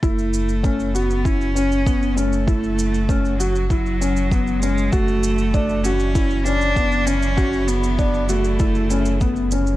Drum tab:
SH |xxxxxxxxxxxxxxxx|xxxxxxxxxxxxxxxx|xxxxxxxxxxxxxxxx|xxxxxxxxxxxxxxxx|
BD |o---o---o---o---|o---o---o---o---|o---o---o---o---|o---o---o---o---|